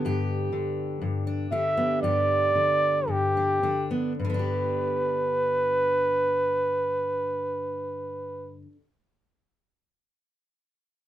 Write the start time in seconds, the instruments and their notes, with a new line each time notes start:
Already playing: steel-string acoustic guitar D3 B3 D4
0.05 steel-string acoustic guitar G2 G4
0.53 steel-string acoustic guitar D3
1.01 steel-string acoustic guitar G2
1.27 steel-string acoustic guitar D4
1.52 steel-string acoustic guitar D3 G4, flugelhorn E5
1.77 steel-string acoustic guitar B3
2.03 steel-string acoustic guitar G2 G4, flugelhorn D5
2.55 steel-string acoustic guitar D3
3.08 steel-string acoustic guitar G2, flugelhorn G4
3.37 steel-string acoustic guitar D4
3.63 steel-string acoustic guitar D3 D4
3.91 steel-string acoustic guitar B3
4.19 steel-string acoustic guitar G2, flugelhorn B4
4.25 steel-string acoustic guitar D3
4.30 steel-string acoustic guitar B3
4.34 steel-string acoustic guitar D4
4.39 steel-string acoustic guitar G4